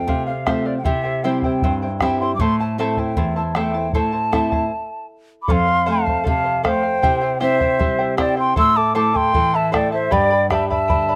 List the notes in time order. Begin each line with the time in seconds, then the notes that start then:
Already playing: A3 C4 F4 G5
0.07 C3 A4 C5 F5, bombo low
0.26 C5 F5
0.46 A3 C4 F4 A4 C5 E5 F5, bombo rim, bombo low
0.65 C5 D5 F5
0.78 G5
0.84 C3 E4 G4 C5 E5 G5, bombo low
1.04 E4 C5 G5
1.23 G3 C4 E4 G4 C5 E5 G5
1.42 E4 C5 G5, bombo low
1.62 G2 E4 C5 E5 G5, bombo low
1.82 E4 C5 G5
2.00 G3 C4 E4 G4 C5 E5 G5, bombo rim, bombo low
2.20 E4 C5 G5 C6
2.35 D6, bombo low
2.40 A2 E4 A4 C5 E5 A5 C6
2.60 E4 C5 A5
2.78 A3 C4 E4 A4 C5 E5 A5
2.97 E4 C5 G5 A5, bombo low
3.16 E2 E4 C5 E5 A5, bombo low
3.36 E4 C5 A5
3.55 A3 C4 E4 A4 C5 E5 G5 A5, bombo rim
3.74 E4 C5 A5
3.93 A2 E4 A4 C5 E5 A5, bombo low
4.12 E4 C5 A5
4.32 A3 C4 E4 A4 C5 E5 A5, bombo rim, bombo low
4.52 E4 C5 A5, bombo low
5.42 B5 D6
5.48 F2 A4 C5 F5 C6, bombo low
5.67 C5 F5
5.86 A3 A4 C5 F5 A5
5.90 F5
6.06 C5 F5, bombo low
6.24 C3 A4 C5 F5, bombo low
6.29 A5
6.44 C5 F5
6.63 A3 A4 C5 F5 G5, bombo rim, bombo low
6.83 C5 F5
7.02 C3 E4 G4 C5 E5 G5, bombo low
7.21 E4 C5 G5
7.40 C4 E4 G4 C5 E5 G5
7.60 E4 C5 G5, bombo low
7.79 G3 E4 C5 E5 G5, bombo low
7.99 E4 C5 G5
8.17 C4 E4 G4 C5 D5 E5 G5, bombo rim, bombo low
8.37 E4 C5 G5 C6
8.56 A2 E4 A4 C5 E5 A5 C6 E6, bombo low
8.76 E4 A4 A5 D6
8.95 A3 E4 A4 C5 E5 A5 D6
9.14 E4 A4 G5 A5 C6, bombo low
9.33 E3 E4 A4 E5 A5, bombo low
9.53 E4 A4 E5 A5
9.72 A3 E4 A4 C5 D5 E5 G5 A5, bombo rim, bombo low
9.92 E4 A4 C5 E5 A5
10.11 G2 G4 B4 D5 G5 B5, bombo low
10.30 B4 D5 B5
10.50 G3 G4 B4 D5 E5 G5 A5 B5, bombo rim, bombo low
10.69 B4 D5 E5 A5 B5, bombo low
10.88 D3 B4 D5 G5 B5, bombo low
11.09 B4 D5 B5